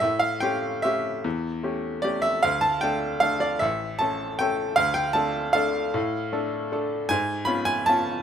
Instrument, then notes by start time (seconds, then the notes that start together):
upright piano
0.00 A2 E5
0.19 F5
0.40 A3 C#4 G4 G5
0.82 A3 C#4 G4 E5
1.24 E2
1.63 A3 C#4 G4
2.02 A3 C#4 G4 D5
2.22 E5
2.43 D2 F5
2.61 A5
2.81 A3 D4 A4 G5
3.20 A3 D4 A4 F5
3.40 D5
3.59 A1 E5
3.99 A3 C#4 A4 A5
4.39 A3 C#4 A4 G5
4.76 D2 F5
4.94 G5
5.13 A3 D4 A4 A5
5.53 A3 D4 A4 F5
5.94 A2
6.32 A3 D4 A4
6.72 A3 D4 A4
7.09 G#2 G#5
7.45 B3 C#4 F4 B5
7.65 G#5
7.86 B3 C#4 F4 A5